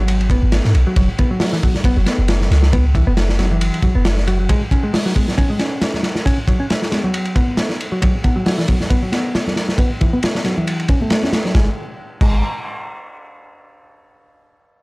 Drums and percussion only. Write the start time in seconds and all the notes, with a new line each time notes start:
0.08 ride
0.21 ride
0.30 kick, ride
0.52 snare, ride
0.64 snare
0.75 ride
0.96 kick, ride
1.19 kick, ride
1.40 snare, open hi-hat
1.53 snare
1.63 kick, ride, high conga
1.74 snare, low conga
1.84 kick, ride
2.06 snare, ride
2.28 snare, ride
2.41 snare, low conga
2.52 snare, ride
2.63 snare
2.73 kick, ride
2.95 kick, ride
3.17 snare, ride
3.29 snare
3.39 snare, ride, high conga
3.52 low conga
3.61 ride
3.74 ride
3.82 kick, ride
4.05 snare, ride
4.18 snare
4.27 ride
4.49 kick, ride
4.71 kick, ride
4.94 snare, open hi-hat
5.05 snare
5.16 kick, ride, high conga
5.28 snare, low conga
5.38 kick, ride
5.59 snare, ride
5.82 snare, ride
5.94 snare, low conga
6.03 snare, ride
6.15 snare
6.26 kick, ride
6.48 kick, ride
6.70 snare, ride
6.82 snare
6.92 snare, ride, high conga
7.04 low conga
7.14 ride
7.25 ride
7.36 kick, ride
7.57 snare, ride
7.70 snare
7.81 ride
8.02 kick, ride
8.24 kick, ride
8.46 snare, open hi-hat
8.59 snare
8.68 kick, ride, high conga
8.81 snare, low conga
8.90 kick, ride
9.12 snare, ride
9.35 snare, ride
9.47 snare, low conga
9.56 snare, ride
9.69 snare
9.78 kick, ride
10.01 kick, ride
10.14 high conga
10.23 snare, ride
10.35 snare
10.44 snare, ride, high conga
10.58 low conga
10.67 ride
10.80 ride
10.88 kick, ride
11.02 high conga
11.10 snare, ride
11.23 snare, high conga
11.33 snare, ride
11.46 snare
11.55 kick, snare
12.21 kick, crash